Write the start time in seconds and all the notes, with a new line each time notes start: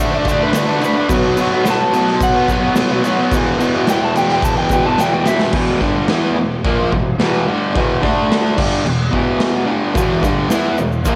Already playing: D3 A3 D4 E5
0.12 A3 D4
0.25 D3 A3 D5, kick, crash, shaker
0.29 D4
0.40 A3 D4 B4
0.53 D3 A3 D4, snare, crash, shaker
0.67 A3 D4
0.81 D3 A3 D4 B4, crash, shaker
0.94 A3 D4
1.09 B2 F#3 B3, kick, crash, shaker
1.37 B2 F#3 B3, crash, shaker
1.52 F#3 B3
1.65 B2 F#3 B3, snare, crash, shaker
1.70 A5
1.92 B2 F#3 B3, crash, shaker
2.07 snare
2.20 F#5, kick, crash, shaker
2.34 F#3 B3
2.48 B2 F#3 B3, kick, crash, shaker
2.61 F#3 B3
2.75 B2 F#3 B3, snare, crash, shaker
2.89 F#3 B3
3.03 B2 F#3 B3, crash, shaker
3.17 F#3 B3
3.31 E2 B2 E3, kick, crash, shaker
3.58 E2 B2 E3, crash, shaker
3.74 B2 E3
3.86 E2 B2 E3 G5, snare, crash, shaker
4.05 A5
4.15 E2 B2 E3 G5, crash, shaker
4.29 G5, snare
4.42 A5, kick, crash, shaker
4.57 B2 E3 G5
4.69 E2 B2, kick, crash, shaker
4.73 E3 G5
4.85 B2 E3 A5
4.98 E2 B2 E3 G5, snare, shaker
5.11 B2 E3 G5
5.25 E2 B2 E3 E5, snare, shaker
5.39 B2 E3, snare
5.52 E2 B2 E3, kick, crash
5.80 G2 D3 G3, kick, snare
6.08 E3 B3 E4, snare, crash
6.36 E2 B2
6.64 A#2 F3 A#3, kick, crash
6.92 E2 B2, kick
7.19 E2 B2 E3, snare, crash
7.46 G2 D3 G3
7.74 E2 B2 E3, kick, crash
8.02 D3 A3 D4, kick, snare
8.32 snare, crash
8.57 G2 D3 G3, kick, crash
8.85 E2 B2, crash
9.11 E2 B2 E3, kick
9.40 snare, crash
9.66 G2 D3 G3
9.95 E2 B2 E3, kick, crash, shaker
10.23 G2 D3 G3, kick, snare, shaker
10.50 E3 B3 E4, snare, crash, shaker
10.78 E2 B2, shaker
10.92 shaker
11.05 A#2 F3 A#3, kick, crash, shaker